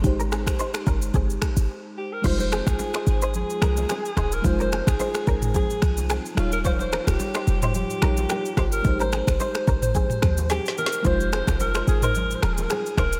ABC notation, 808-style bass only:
X:1
M:4/4
L:1/16
Q:"Swing 16ths" 1/4=109
K:Fm
V:1 name="808-style bass" clef=bass
A,,,4 z2 G,,,2 G,,,2 z A,,, z4 | F,,,3 A,,, z2 A,,,3 z C,,2 z2 E,,,2 | F,,,3 A,,, z2 A,,,3 z C,,3 z E,,,2- | E,,,3 E,,, z2 F,,,3 z B,,,2 z2 G,,,2 |
A,,,3 G,,, z2 A,,,3 z E,,3 z3 | F,,,3 F,,,3 A,,,4 E,,,2 z2 E,,,2 |]